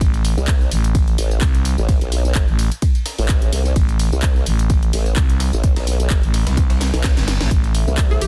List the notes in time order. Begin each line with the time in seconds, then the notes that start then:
0.01 A1, kick, closed hi-hat, ride, tambourine
0.14 closed hi-hat, ride, tambourine
0.25 open hi-hat, ride, tambourine
0.37 C2, tambourine
0.48 kick, snare, clap, closed hi-hat, ride, tambourine
0.61 tambourine
0.71 A1, open hi-hat, ride, tambourine
0.84 closed hi-hat, tambourine
0.95 kick, closed hi-hat, ride, tambourine
1.08 closed hi-hat, tambourine
1.18 A1, open hi-hat, ride, tambourine
1.31 tambourine
1.41 C2, kick, snare, clap, closed hi-hat, ride, tambourine
1.55 snare, closed hi-hat, tambourine
1.65 open hi-hat, ride, tambourine
1.78 A1, tambourine
1.89 kick, closed hi-hat, ride, tambourine
2.01 B1, closed hi-hat, ride, tambourine
2.12 open hi-hat, ride, tambourine
2.25 tambourine
2.35 G1, kick, snare, clap, closed hi-hat, ride, tambourine
2.48 A1, tambourine
2.59 open hi-hat, tambourine
2.72 closed hi-hat, tambourine
2.82 kick, closed hi-hat, ride, tambourine
2.95 closed hi-hat, ride, tambourine
3.06 snare, open hi-hat, ride, tambourine
3.18 A1, open hi-hat, tambourine
3.29 kick, snare, clap, closed hi-hat, ride, tambourine
3.42 closed hi-hat, tambourine
3.53 C2, open hi-hat, ride, tambourine
3.65 ride, tambourine
3.76 A1, kick, closed hi-hat, ride, tambourine
3.89 closed hi-hat, ride, tambourine
3.99 open hi-hat, ride, tambourine
4.12 C2, tambourine
4.22 kick, snare, clap, closed hi-hat, ride, tambourine
4.36 tambourine
4.46 A1, open hi-hat, ride, tambourine
4.59 closed hi-hat, tambourine
4.70 kick, closed hi-hat, ride, tambourine
4.83 closed hi-hat, tambourine
4.93 A1, open hi-hat, ride, tambourine
5.06 tambourine
5.16 C2, kick, snare, clap, closed hi-hat, ride, tambourine
5.29 snare, closed hi-hat, tambourine
5.40 snare, open hi-hat, ride, tambourine
5.53 A1, tambourine
5.64 kick, closed hi-hat, ride, tambourine
5.76 B1, snare, closed hi-hat, ride, tambourine
5.87 open hi-hat, ride, tambourine
6.00 closed hi-hat, tambourine
6.10 G1, kick, snare, clap, closed hi-hat, ride, tambourine
6.23 A1, closed hi-hat, tambourine
6.34 snare, open hi-hat, ride, tambourine
6.47 C2, snare, closed hi-hat, ride, tambourine
6.57 kick, snare, closed hi-hat, ride, tambourine, reverse cymbal
6.70 snare, closed hi-hat, ride, tambourine
6.81 snare, open hi-hat, ride, tambourine
6.93 B1, snare, open hi-hat, tambourine
7.04 kick, snare, clap, closed hi-hat, ride, tambourine
7.17 G1, snare, closed hi-hat, tambourine
7.28 snare, open hi-hat, ride, tambourine
7.41 A1, snare, ride, tambourine
7.51 A1 E3 A3 A4 E5, kick, closed hi-hat, ride, tambourine
7.64 closed hi-hat, ride, tambourine
7.75 open hi-hat, ride, tambourine
7.87 C2, tambourine
7.98 kick, snare, clap, closed hi-hat, ride, tambourine
8.11 A4, tambourine
8.21 A1 G4, open hi-hat, ride, tambourine